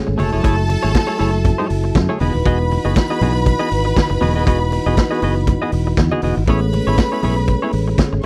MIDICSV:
0, 0, Header, 1, 7, 480
1, 0, Start_track
1, 0, Key_signature, 4, "major"
1, 0, Tempo, 502934
1, 422, Time_signature, 4, 2, 24, 8
1, 7881, End_track
2, 0, Start_track
2, 0, Title_t, "String section"
2, 0, Program_c, 0, 48
2, 187, Note_on_c, 0, 69, 99
2, 187, Note_on_c, 0, 81, 107
2, 1832, Note_off_c, 0, 69, 0
2, 1832, Note_off_c, 0, 81, 0
2, 2110, Note_on_c, 0, 71, 96
2, 2110, Note_on_c, 0, 83, 116
2, 5667, Note_off_c, 0, 71, 0
2, 5667, Note_off_c, 0, 83, 0
2, 6179, Note_on_c, 0, 71, 94
2, 6180, Note_on_c, 0, 83, 111
2, 7590, Note_off_c, 0, 71, 0
2, 7590, Note_off_c, 0, 83, 0
2, 7881, End_track
3, 0, Start_track
3, 0, Title_t, "Clean electric guitar"
3, 0, Program_c, 1, 27
3, 169, Note_on_c, 1, 57, 73
3, 177, Note_on_c, 1, 64, 76
3, 183, Note_on_c, 1, 68, 77
3, 187, Note_on_c, 1, 73, 84
3, 299, Note_off_c, 1, 73, 0
3, 303, Note_off_c, 1, 68, 0
3, 310, Note_off_c, 1, 64, 0
3, 311, Note_on_c, 1, 73, 68
3, 313, Note_off_c, 1, 57, 0
3, 314, Note_on_c, 1, 68, 64
3, 321, Note_on_c, 1, 64, 58
3, 325, Note_on_c, 1, 57, 59
3, 398, Note_off_c, 1, 57, 0
3, 407, Note_off_c, 1, 64, 0
3, 408, Note_off_c, 1, 68, 0
3, 409, Note_on_c, 1, 57, 90
3, 414, Note_off_c, 1, 73, 0
3, 419, Note_on_c, 1, 64, 93
3, 419, Note_on_c, 1, 68, 97
3, 426, Note_on_c, 1, 73, 98
3, 538, Note_off_c, 1, 73, 0
3, 544, Note_off_c, 1, 68, 0
3, 549, Note_off_c, 1, 64, 0
3, 585, Note_off_c, 1, 57, 0
3, 788, Note_on_c, 1, 73, 70
3, 792, Note_on_c, 1, 68, 63
3, 799, Note_on_c, 1, 64, 53
3, 803, Note_on_c, 1, 57, 57
3, 883, Note_off_c, 1, 57, 0
3, 886, Note_off_c, 1, 64, 0
3, 890, Note_off_c, 1, 68, 0
3, 893, Note_off_c, 1, 73, 0
3, 1021, Note_on_c, 1, 73, 58
3, 1027, Note_on_c, 1, 68, 58
3, 1034, Note_on_c, 1, 64, 61
3, 1037, Note_on_c, 1, 57, 46
3, 1120, Note_off_c, 1, 57, 0
3, 1126, Note_off_c, 1, 64, 0
3, 1130, Note_off_c, 1, 68, 0
3, 1131, Note_on_c, 1, 57, 85
3, 1137, Note_off_c, 1, 73, 0
3, 1138, Note_on_c, 1, 64, 85
3, 1142, Note_on_c, 1, 68, 86
3, 1149, Note_on_c, 1, 73, 89
3, 1254, Note_off_c, 1, 73, 0
3, 1259, Note_off_c, 1, 68, 0
3, 1262, Note_off_c, 1, 64, 0
3, 1306, Note_off_c, 1, 57, 0
3, 1511, Note_on_c, 1, 73, 75
3, 1517, Note_on_c, 1, 68, 70
3, 1521, Note_on_c, 1, 64, 72
3, 1526, Note_on_c, 1, 57, 65
3, 1605, Note_off_c, 1, 57, 0
3, 1611, Note_off_c, 1, 64, 0
3, 1613, Note_off_c, 1, 68, 0
3, 1615, Note_off_c, 1, 73, 0
3, 1994, Note_on_c, 1, 73, 71
3, 2000, Note_on_c, 1, 68, 68
3, 2004, Note_on_c, 1, 64, 67
3, 2009, Note_on_c, 1, 57, 62
3, 2099, Note_off_c, 1, 57, 0
3, 2102, Note_off_c, 1, 68, 0
3, 2103, Note_on_c, 1, 59, 61
3, 2105, Note_off_c, 1, 64, 0
3, 2109, Note_on_c, 1, 66, 64
3, 2113, Note_on_c, 1, 68, 70
3, 2114, Note_off_c, 1, 73, 0
3, 2118, Note_on_c, 1, 75, 65
3, 2232, Note_off_c, 1, 75, 0
3, 2237, Note_off_c, 1, 68, 0
3, 2242, Note_off_c, 1, 59, 0
3, 2245, Note_off_c, 1, 66, 0
3, 2343, Note_on_c, 1, 59, 98
3, 2350, Note_on_c, 1, 66, 96
3, 2354, Note_on_c, 1, 68, 101
3, 2357, Note_on_c, 1, 75, 113
3, 2475, Note_off_c, 1, 75, 0
3, 2481, Note_off_c, 1, 68, 0
3, 2484, Note_off_c, 1, 66, 0
3, 2512, Note_off_c, 1, 59, 0
3, 2718, Note_on_c, 1, 75, 60
3, 2721, Note_on_c, 1, 68, 58
3, 2725, Note_on_c, 1, 66, 64
3, 2731, Note_on_c, 1, 59, 50
3, 2817, Note_off_c, 1, 59, 0
3, 2822, Note_off_c, 1, 66, 0
3, 2826, Note_off_c, 1, 68, 0
3, 2829, Note_off_c, 1, 75, 0
3, 2961, Note_on_c, 1, 75, 59
3, 2965, Note_on_c, 1, 68, 55
3, 2969, Note_on_c, 1, 66, 52
3, 2974, Note_on_c, 1, 59, 51
3, 3055, Note_off_c, 1, 59, 0
3, 3060, Note_off_c, 1, 66, 0
3, 3065, Note_off_c, 1, 68, 0
3, 3066, Note_on_c, 1, 59, 72
3, 3070, Note_off_c, 1, 75, 0
3, 3072, Note_on_c, 1, 66, 88
3, 3077, Note_on_c, 1, 68, 77
3, 3082, Note_on_c, 1, 75, 74
3, 3187, Note_off_c, 1, 75, 0
3, 3191, Note_off_c, 1, 68, 0
3, 3195, Note_off_c, 1, 66, 0
3, 3234, Note_off_c, 1, 59, 0
3, 3430, Note_on_c, 1, 75, 74
3, 3435, Note_on_c, 1, 68, 65
3, 3442, Note_on_c, 1, 66, 66
3, 3447, Note_on_c, 1, 59, 56
3, 3530, Note_off_c, 1, 59, 0
3, 3534, Note_off_c, 1, 66, 0
3, 3536, Note_off_c, 1, 68, 0
3, 3538, Note_off_c, 1, 75, 0
3, 4017, Note_on_c, 1, 59, 78
3, 4021, Note_on_c, 1, 66, 70
3, 4029, Note_on_c, 1, 68, 72
3, 4032, Note_on_c, 1, 75, 80
3, 4145, Note_off_c, 1, 75, 0
3, 4153, Note_off_c, 1, 68, 0
3, 4155, Note_off_c, 1, 66, 0
3, 4157, Note_on_c, 1, 75, 70
3, 4161, Note_off_c, 1, 59, 0
3, 4164, Note_on_c, 1, 68, 69
3, 4166, Note_on_c, 1, 66, 62
3, 4172, Note_on_c, 1, 59, 60
3, 4245, Note_off_c, 1, 59, 0
3, 4252, Note_off_c, 1, 66, 0
3, 4256, Note_off_c, 1, 68, 0
3, 4256, Note_on_c, 1, 59, 84
3, 4260, Note_off_c, 1, 75, 0
3, 4264, Note_on_c, 1, 66, 91
3, 4268, Note_on_c, 1, 68, 91
3, 4271, Note_on_c, 1, 75, 93
3, 4386, Note_off_c, 1, 75, 0
3, 4392, Note_off_c, 1, 68, 0
3, 4398, Note_off_c, 1, 66, 0
3, 4429, Note_off_c, 1, 59, 0
3, 4642, Note_on_c, 1, 75, 68
3, 4648, Note_on_c, 1, 68, 67
3, 4654, Note_on_c, 1, 66, 60
3, 4658, Note_on_c, 1, 59, 55
3, 4731, Note_off_c, 1, 59, 0
3, 4736, Note_off_c, 1, 66, 0
3, 4740, Note_off_c, 1, 68, 0
3, 4743, Note_off_c, 1, 75, 0
3, 4872, Note_on_c, 1, 75, 68
3, 4880, Note_on_c, 1, 68, 69
3, 4887, Note_on_c, 1, 66, 57
3, 4889, Note_on_c, 1, 59, 52
3, 4972, Note_off_c, 1, 59, 0
3, 4977, Note_off_c, 1, 66, 0
3, 4983, Note_off_c, 1, 68, 0
3, 4983, Note_on_c, 1, 59, 73
3, 4985, Note_off_c, 1, 75, 0
3, 4989, Note_on_c, 1, 66, 76
3, 4995, Note_on_c, 1, 68, 82
3, 4999, Note_on_c, 1, 75, 88
3, 5111, Note_off_c, 1, 75, 0
3, 5117, Note_off_c, 1, 68, 0
3, 5123, Note_off_c, 1, 66, 0
3, 5152, Note_off_c, 1, 59, 0
3, 5361, Note_on_c, 1, 75, 78
3, 5368, Note_on_c, 1, 68, 68
3, 5372, Note_on_c, 1, 66, 67
3, 5375, Note_on_c, 1, 59, 59
3, 5456, Note_off_c, 1, 59, 0
3, 5460, Note_off_c, 1, 66, 0
3, 5463, Note_off_c, 1, 68, 0
3, 5466, Note_off_c, 1, 75, 0
3, 5837, Note_on_c, 1, 75, 73
3, 5843, Note_on_c, 1, 68, 75
3, 5848, Note_on_c, 1, 66, 64
3, 5853, Note_on_c, 1, 59, 58
3, 5932, Note_off_c, 1, 59, 0
3, 5938, Note_off_c, 1, 66, 0
3, 5940, Note_off_c, 1, 68, 0
3, 5944, Note_on_c, 1, 59, 54
3, 5945, Note_off_c, 1, 75, 0
3, 5949, Note_on_c, 1, 66, 60
3, 5951, Note_on_c, 1, 68, 57
3, 5956, Note_on_c, 1, 75, 63
3, 6071, Note_off_c, 1, 75, 0
3, 6075, Note_off_c, 1, 68, 0
3, 6080, Note_off_c, 1, 66, 0
3, 6081, Note_off_c, 1, 59, 0
3, 6188, Note_on_c, 1, 59, 88
3, 6194, Note_on_c, 1, 64, 98
3, 6199, Note_on_c, 1, 68, 92
3, 6202, Note_on_c, 1, 73, 108
3, 6310, Note_off_c, 1, 73, 0
3, 6316, Note_off_c, 1, 68, 0
3, 6319, Note_off_c, 1, 64, 0
3, 6354, Note_off_c, 1, 59, 0
3, 6556, Note_on_c, 1, 73, 67
3, 6563, Note_on_c, 1, 68, 53
3, 6569, Note_on_c, 1, 64, 65
3, 6573, Note_on_c, 1, 59, 59
3, 6654, Note_off_c, 1, 59, 0
3, 6659, Note_off_c, 1, 64, 0
3, 6663, Note_off_c, 1, 68, 0
3, 6667, Note_off_c, 1, 73, 0
3, 6794, Note_on_c, 1, 73, 64
3, 6799, Note_on_c, 1, 68, 63
3, 6805, Note_on_c, 1, 64, 54
3, 6808, Note_on_c, 1, 59, 47
3, 6887, Note_off_c, 1, 59, 0
3, 6894, Note_off_c, 1, 64, 0
3, 6897, Note_off_c, 1, 68, 0
3, 6898, Note_on_c, 1, 59, 73
3, 6905, Note_off_c, 1, 73, 0
3, 6905, Note_on_c, 1, 64, 79
3, 6908, Note_on_c, 1, 68, 79
3, 6915, Note_on_c, 1, 73, 86
3, 7027, Note_off_c, 1, 73, 0
3, 7033, Note_off_c, 1, 68, 0
3, 7040, Note_off_c, 1, 64, 0
3, 7068, Note_off_c, 1, 59, 0
3, 7276, Note_on_c, 1, 73, 78
3, 7282, Note_on_c, 1, 68, 74
3, 7289, Note_on_c, 1, 64, 78
3, 7294, Note_on_c, 1, 59, 62
3, 7371, Note_off_c, 1, 59, 0
3, 7373, Note_off_c, 1, 64, 0
3, 7376, Note_off_c, 1, 68, 0
3, 7379, Note_off_c, 1, 73, 0
3, 7881, End_track
4, 0, Start_track
4, 0, Title_t, "Tonewheel organ"
4, 0, Program_c, 2, 16
4, 0, Note_on_c, 2, 56, 59
4, 0, Note_on_c, 2, 57, 57
4, 0, Note_on_c, 2, 61, 71
4, 161, Note_off_c, 2, 56, 0
4, 165, Note_off_c, 2, 57, 0
4, 165, Note_off_c, 2, 61, 0
4, 175, Note_on_c, 2, 69, 78
4, 177, Note_on_c, 2, 64, 65
4, 180, Note_on_c, 2, 54, 74
4, 2080, Note_off_c, 2, 69, 0
4, 2081, Note_off_c, 2, 64, 0
4, 2082, Note_off_c, 2, 54, 0
4, 2106, Note_on_c, 2, 52, 70
4, 2108, Note_on_c, 2, 66, 68
4, 2109, Note_on_c, 2, 63, 66
4, 6144, Note_off_c, 2, 52, 0
4, 6145, Note_off_c, 2, 66, 0
4, 6146, Note_off_c, 2, 63, 0
4, 6180, Note_on_c, 2, 57, 64
4, 6181, Note_on_c, 2, 61, 77
4, 6182, Note_on_c, 2, 56, 61
4, 7842, Note_off_c, 2, 57, 0
4, 7842, Note_off_c, 2, 61, 0
4, 7843, Note_off_c, 2, 56, 0
4, 7881, End_track
5, 0, Start_track
5, 0, Title_t, "Fingered electric bass"
5, 0, Program_c, 3, 33
5, 79, Note_on_c, 3, 32, 84
5, 162, Note_off_c, 3, 32, 0
5, 188, Note_on_c, 3, 30, 94
5, 293, Note_off_c, 3, 30, 0
5, 322, Note_on_c, 3, 29, 95
5, 404, Note_off_c, 3, 29, 0
5, 421, Note_on_c, 3, 30, 111
5, 720, Note_off_c, 3, 30, 0
5, 803, Note_on_c, 3, 32, 96
5, 885, Note_off_c, 3, 32, 0
5, 1150, Note_on_c, 3, 30, 89
5, 1445, Note_off_c, 3, 30, 0
5, 1625, Note_on_c, 3, 30, 87
5, 1815, Note_off_c, 3, 30, 0
5, 1862, Note_on_c, 3, 42, 88
5, 1969, Note_off_c, 3, 42, 0
5, 2106, Note_on_c, 3, 28, 99
5, 2212, Note_off_c, 3, 28, 0
5, 2241, Note_on_c, 3, 27, 89
5, 2324, Note_off_c, 3, 27, 0
5, 2345, Note_on_c, 3, 28, 99
5, 2642, Note_off_c, 3, 28, 0
5, 2721, Note_on_c, 3, 30, 104
5, 2804, Note_off_c, 3, 30, 0
5, 3066, Note_on_c, 3, 35, 90
5, 3363, Note_off_c, 3, 35, 0
5, 3546, Note_on_c, 3, 32, 82
5, 3736, Note_off_c, 3, 32, 0
5, 3919, Note_on_c, 3, 30, 86
5, 4002, Note_off_c, 3, 30, 0
5, 4024, Note_on_c, 3, 28, 85
5, 4158, Note_off_c, 3, 28, 0
5, 4158, Note_on_c, 3, 27, 81
5, 4266, Note_off_c, 3, 27, 0
5, 4266, Note_on_c, 3, 28, 101
5, 4563, Note_off_c, 3, 28, 0
5, 4640, Note_on_c, 3, 28, 91
5, 4723, Note_off_c, 3, 28, 0
5, 4984, Note_on_c, 3, 30, 86
5, 5281, Note_off_c, 3, 30, 0
5, 5464, Note_on_c, 3, 28, 89
5, 5654, Note_off_c, 3, 28, 0
5, 5702, Note_on_c, 3, 40, 92
5, 5808, Note_off_c, 3, 40, 0
5, 5944, Note_on_c, 3, 28, 82
5, 6049, Note_off_c, 3, 28, 0
5, 6081, Note_on_c, 3, 32, 83
5, 6163, Note_off_c, 3, 32, 0
5, 6183, Note_on_c, 3, 33, 96
5, 6480, Note_off_c, 3, 33, 0
5, 6558, Note_on_c, 3, 32, 103
5, 6641, Note_off_c, 3, 32, 0
5, 6903, Note_on_c, 3, 35, 91
5, 7200, Note_off_c, 3, 35, 0
5, 7380, Note_on_c, 3, 33, 95
5, 7571, Note_off_c, 3, 33, 0
5, 7756, Note_on_c, 3, 32, 79
5, 7839, Note_off_c, 3, 32, 0
5, 7881, End_track
6, 0, Start_track
6, 0, Title_t, "Muted clean electric guitar strokes"
6, 65, Note_on_c, 9, 29, 44
6, 160, Note_off_c, 9, 29, 0
6, 550, Note_on_c, 9, 29, 35
6, 645, Note_off_c, 9, 29, 0
6, 653, Note_on_c, 9, 29, 48
6, 748, Note_off_c, 9, 29, 0
6, 1265, Note_on_c, 9, 29, 51
6, 1361, Note_off_c, 9, 29, 0
6, 1376, Note_on_c, 9, 29, 40
6, 1472, Note_off_c, 9, 29, 0
6, 1617, Note_on_c, 9, 29, 47
6, 1712, Note_off_c, 9, 29, 0
6, 1754, Note_on_c, 9, 29, 41
6, 1850, Note_off_c, 9, 29, 0
6, 1862, Note_on_c, 9, 29, 35
6, 1958, Note_off_c, 9, 29, 0
6, 2243, Note_on_c, 9, 29, 42
6, 2339, Note_off_c, 9, 29, 0
6, 2486, Note_on_c, 9, 29, 39
6, 2582, Note_off_c, 9, 29, 0
6, 2589, Note_on_c, 9, 29, 50
6, 2685, Note_off_c, 9, 29, 0
6, 2839, Note_on_c, 9, 29, 44
6, 2935, Note_off_c, 9, 29, 0
6, 3198, Note_on_c, 9, 29, 52
6, 3294, Note_off_c, 9, 29, 0
6, 3300, Note_on_c, 9, 29, 47
6, 3395, Note_off_c, 9, 29, 0
6, 3548, Note_on_c, 9, 29, 52
6, 3643, Note_off_c, 9, 29, 0
6, 3673, Note_on_c, 9, 29, 49
6, 3769, Note_off_c, 9, 29, 0
6, 3783, Note_on_c, 9, 29, 44
6, 3878, Note_off_c, 9, 29, 0
6, 3911, Note_on_c, 9, 29, 52
6, 4006, Note_off_c, 9, 29, 0
6, 4397, Note_on_c, 9, 29, 44
6, 4493, Note_off_c, 9, 29, 0
6, 4504, Note_on_c, 9, 29, 39
6, 4600, Note_off_c, 9, 29, 0
6, 5122, Note_on_c, 9, 29, 49
6, 5218, Note_off_c, 9, 29, 0
6, 5228, Note_on_c, 9, 29, 45
6, 5324, Note_off_c, 9, 29, 0
6, 5478, Note_on_c, 9, 29, 51
6, 5573, Note_off_c, 9, 29, 0
6, 5603, Note_on_c, 9, 29, 56
6, 5698, Note_off_c, 9, 29, 0
6, 5711, Note_on_c, 9, 29, 40
6, 5806, Note_off_c, 9, 29, 0
6, 6322, Note_on_c, 9, 29, 40
6, 6417, Note_off_c, 9, 29, 0
6, 6424, Note_on_c, 9, 29, 38
6, 6519, Note_off_c, 9, 29, 0
6, 6675, Note_on_c, 9, 29, 51
6, 6770, Note_off_c, 9, 29, 0
6, 7039, Note_on_c, 9, 29, 45
6, 7134, Note_off_c, 9, 29, 0
6, 7142, Note_on_c, 9, 29, 41
6, 7238, Note_off_c, 9, 29, 0
6, 7382, Note_on_c, 9, 29, 43
6, 7478, Note_off_c, 9, 29, 0
6, 7517, Note_on_c, 9, 29, 53
6, 7612, Note_off_c, 9, 29, 0
6, 7625, Note_on_c, 9, 29, 34
6, 7721, Note_off_c, 9, 29, 0
6, 7756, Note_on_c, 9, 29, 44
6, 7852, Note_off_c, 9, 29, 0
6, 7881, End_track
7, 0, Start_track
7, 0, Title_t, "Drums"
7, 177, Note_on_c, 9, 46, 71
7, 190, Note_on_c, 9, 63, 74
7, 273, Note_off_c, 9, 46, 0
7, 286, Note_off_c, 9, 63, 0
7, 422, Note_on_c, 9, 36, 127
7, 422, Note_on_c, 9, 42, 66
7, 517, Note_off_c, 9, 36, 0
7, 517, Note_off_c, 9, 42, 0
7, 663, Note_on_c, 9, 46, 64
7, 668, Note_on_c, 9, 62, 60
7, 758, Note_off_c, 9, 46, 0
7, 764, Note_off_c, 9, 62, 0
7, 901, Note_on_c, 9, 42, 65
7, 905, Note_on_c, 9, 36, 111
7, 907, Note_on_c, 9, 63, 79
7, 909, Note_on_c, 9, 38, 119
7, 996, Note_off_c, 9, 42, 0
7, 1000, Note_off_c, 9, 36, 0
7, 1003, Note_off_c, 9, 63, 0
7, 1004, Note_off_c, 9, 38, 0
7, 1145, Note_on_c, 9, 46, 59
7, 1240, Note_off_c, 9, 46, 0
7, 1381, Note_on_c, 9, 62, 61
7, 1381, Note_on_c, 9, 64, 85
7, 1383, Note_on_c, 9, 36, 96
7, 1387, Note_on_c, 9, 42, 71
7, 1476, Note_off_c, 9, 62, 0
7, 1476, Note_off_c, 9, 64, 0
7, 1479, Note_off_c, 9, 36, 0
7, 1482, Note_off_c, 9, 42, 0
7, 1621, Note_on_c, 9, 46, 64
7, 1716, Note_off_c, 9, 46, 0
7, 1862, Note_on_c, 9, 36, 127
7, 1863, Note_on_c, 9, 42, 78
7, 1869, Note_on_c, 9, 63, 81
7, 1870, Note_on_c, 9, 38, 127
7, 1957, Note_off_c, 9, 36, 0
7, 1958, Note_off_c, 9, 42, 0
7, 1964, Note_off_c, 9, 63, 0
7, 1966, Note_off_c, 9, 38, 0
7, 2099, Note_on_c, 9, 46, 74
7, 2111, Note_on_c, 9, 63, 77
7, 2194, Note_off_c, 9, 46, 0
7, 2207, Note_off_c, 9, 63, 0
7, 2343, Note_on_c, 9, 36, 119
7, 2343, Note_on_c, 9, 42, 63
7, 2438, Note_off_c, 9, 42, 0
7, 2439, Note_off_c, 9, 36, 0
7, 2586, Note_on_c, 9, 46, 66
7, 2592, Note_on_c, 9, 62, 56
7, 2682, Note_off_c, 9, 46, 0
7, 2687, Note_off_c, 9, 62, 0
7, 2823, Note_on_c, 9, 42, 67
7, 2826, Note_on_c, 9, 36, 118
7, 2831, Note_on_c, 9, 38, 120
7, 2832, Note_on_c, 9, 63, 88
7, 2918, Note_off_c, 9, 42, 0
7, 2921, Note_off_c, 9, 36, 0
7, 2926, Note_off_c, 9, 38, 0
7, 2928, Note_off_c, 9, 63, 0
7, 3066, Note_on_c, 9, 46, 64
7, 3066, Note_on_c, 9, 62, 41
7, 3066, Note_on_c, 9, 64, 82
7, 3161, Note_off_c, 9, 46, 0
7, 3162, Note_off_c, 9, 62, 0
7, 3162, Note_off_c, 9, 64, 0
7, 3304, Note_on_c, 9, 36, 106
7, 3306, Note_on_c, 9, 42, 63
7, 3306, Note_on_c, 9, 62, 62
7, 3400, Note_off_c, 9, 36, 0
7, 3401, Note_off_c, 9, 42, 0
7, 3401, Note_off_c, 9, 62, 0
7, 3545, Note_on_c, 9, 46, 67
7, 3641, Note_off_c, 9, 46, 0
7, 3784, Note_on_c, 9, 36, 115
7, 3786, Note_on_c, 9, 42, 70
7, 3789, Note_on_c, 9, 63, 80
7, 3794, Note_on_c, 9, 38, 127
7, 3880, Note_off_c, 9, 36, 0
7, 3882, Note_off_c, 9, 42, 0
7, 3885, Note_off_c, 9, 63, 0
7, 3889, Note_off_c, 9, 38, 0
7, 4026, Note_on_c, 9, 46, 71
7, 4029, Note_on_c, 9, 63, 77
7, 4122, Note_off_c, 9, 46, 0
7, 4125, Note_off_c, 9, 63, 0
7, 4265, Note_on_c, 9, 36, 127
7, 4266, Note_on_c, 9, 42, 70
7, 4360, Note_off_c, 9, 36, 0
7, 4361, Note_off_c, 9, 42, 0
7, 4507, Note_on_c, 9, 62, 53
7, 4511, Note_on_c, 9, 46, 66
7, 4602, Note_off_c, 9, 62, 0
7, 4606, Note_off_c, 9, 46, 0
7, 4743, Note_on_c, 9, 42, 62
7, 4746, Note_on_c, 9, 36, 117
7, 4751, Note_on_c, 9, 38, 123
7, 4751, Note_on_c, 9, 63, 75
7, 4838, Note_off_c, 9, 42, 0
7, 4842, Note_off_c, 9, 36, 0
7, 4846, Note_off_c, 9, 38, 0
7, 4847, Note_off_c, 9, 63, 0
7, 4982, Note_on_c, 9, 46, 59
7, 4984, Note_on_c, 9, 62, 36
7, 5077, Note_off_c, 9, 46, 0
7, 5080, Note_off_c, 9, 62, 0
7, 5223, Note_on_c, 9, 36, 95
7, 5224, Note_on_c, 9, 42, 62
7, 5227, Note_on_c, 9, 62, 59
7, 5227, Note_on_c, 9, 64, 82
7, 5318, Note_off_c, 9, 36, 0
7, 5319, Note_off_c, 9, 42, 0
7, 5322, Note_off_c, 9, 62, 0
7, 5322, Note_off_c, 9, 64, 0
7, 5459, Note_on_c, 9, 46, 65
7, 5555, Note_off_c, 9, 46, 0
7, 5700, Note_on_c, 9, 36, 126
7, 5700, Note_on_c, 9, 42, 78
7, 5708, Note_on_c, 9, 38, 127
7, 5713, Note_on_c, 9, 63, 74
7, 5796, Note_off_c, 9, 36, 0
7, 5796, Note_off_c, 9, 42, 0
7, 5803, Note_off_c, 9, 38, 0
7, 5808, Note_off_c, 9, 63, 0
7, 5835, Note_on_c, 9, 63, 59
7, 5931, Note_off_c, 9, 63, 0
7, 5935, Note_on_c, 9, 46, 80
7, 5952, Note_on_c, 9, 63, 67
7, 6030, Note_off_c, 9, 46, 0
7, 6048, Note_off_c, 9, 63, 0
7, 6178, Note_on_c, 9, 42, 71
7, 6180, Note_on_c, 9, 36, 112
7, 6273, Note_off_c, 9, 42, 0
7, 6275, Note_off_c, 9, 36, 0
7, 6418, Note_on_c, 9, 46, 63
7, 6428, Note_on_c, 9, 62, 54
7, 6514, Note_off_c, 9, 46, 0
7, 6524, Note_off_c, 9, 62, 0
7, 6656, Note_on_c, 9, 42, 64
7, 6662, Note_on_c, 9, 36, 117
7, 6665, Note_on_c, 9, 38, 123
7, 6667, Note_on_c, 9, 63, 80
7, 6752, Note_off_c, 9, 42, 0
7, 6757, Note_off_c, 9, 36, 0
7, 6760, Note_off_c, 9, 38, 0
7, 6762, Note_off_c, 9, 63, 0
7, 6900, Note_on_c, 9, 62, 38
7, 6900, Note_on_c, 9, 64, 79
7, 6901, Note_on_c, 9, 46, 66
7, 6996, Note_off_c, 9, 62, 0
7, 6996, Note_off_c, 9, 64, 0
7, 6997, Note_off_c, 9, 46, 0
7, 7137, Note_on_c, 9, 42, 58
7, 7138, Note_on_c, 9, 36, 106
7, 7142, Note_on_c, 9, 62, 58
7, 7232, Note_off_c, 9, 42, 0
7, 7234, Note_off_c, 9, 36, 0
7, 7238, Note_off_c, 9, 62, 0
7, 7373, Note_on_c, 9, 46, 66
7, 7468, Note_off_c, 9, 46, 0
7, 7618, Note_on_c, 9, 36, 118
7, 7618, Note_on_c, 9, 42, 74
7, 7623, Note_on_c, 9, 63, 76
7, 7625, Note_on_c, 9, 38, 124
7, 7713, Note_off_c, 9, 36, 0
7, 7713, Note_off_c, 9, 42, 0
7, 7719, Note_off_c, 9, 63, 0
7, 7721, Note_off_c, 9, 38, 0
7, 7881, End_track
0, 0, End_of_file